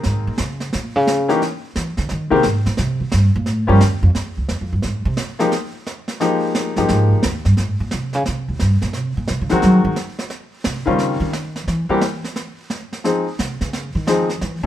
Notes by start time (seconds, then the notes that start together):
Already playing: D#3 A#3 C4 D#4 G#4
0.03 G#2, brush sweep, snare
0.27 A#2
0.38 C#3, snare
0.60 snare
0.73 A#2, brush sweep, snare
0.96 C#3
1.07 snare
1.28 E3 A#3 C#4 D#4 G4, snare
1.42 brush sweep, snare
1.76 E3, snare
1.97 D3, snare
2.09 D#3, brush sweep, snare
2.31 C3 D#3 G#3 A#3 C4 G4
2.43 G#2, snare
2.66 A#2, snare
2.77 C3, brush sweep, snare
3.00 D#2
3.12 G2, snare
3.36 A#2
3.46 A2, brush sweep, snare
3.67 G2 F3 G3 A#3 C#4 G4
3.81 D#2, snare
4.03 F2
4.15 brush sweep, snare
4.37 C#2
4.49 E2, snare
4.61 F2
4.73 G2
4.82 G#2, brush sweep, snare
5.05 C3
5.17 snare
5.39 F3 G#3 A#3 D#4 G4, snare
5.52 brush sweep, snare
5.87 snare
6.08 snare
6.20 F3 G#3 A#3 D#4 G4, brush sweep, snare
6.55 snare
6.76 G2 F3 G#3 A#3 D#4 G4, snare
6.88 G#2, brush sweep, snare
7.12 C2
7.23 D#2, snare
7.45 G2, snare
7.57 G#2, brush sweep, snare
7.80 A#2
7.91 C3, snare
8.13 C#3, snare
8.26 C3, brush sweep, snare
8.48 D#2
8.59 G2, snare
8.81 A#2, snare
8.93 C3, brush sweep, snare
9.17 A#2
9.28 C3, snare
9.41 C#3
9.49 D#3 F3 F#3 G#3 C4 F#4, snare
9.62 F#3, brush sweep, snare
9.85 D#3
9.96 snare
10.19 snare
10.30 brush sweep, snare
10.64 C3, snare
10.86 C#3 D#3 G3 C4 C#4 F4
10.99 brush sweep, snare
11.20 D#3
11.33 snare
11.56 snare
11.67 E3, brush sweep, snare
11.89 E3 G3 A#3 C4 G4
12.01 snare
12.24 snare
12.36 brush sweep, snare
12.70 snare
12.93 snare
13.04 F3 G#3 C4 D#4 G#4, brush sweep, snare
13.39 C3, snare
13.61 C#3, snare
13.73 brush sweep, snare
13.95 D#3
14.07 F3 G#3 C4 D#4 G#4, snare
14.29 snare
14.41 E3, brush sweep, snare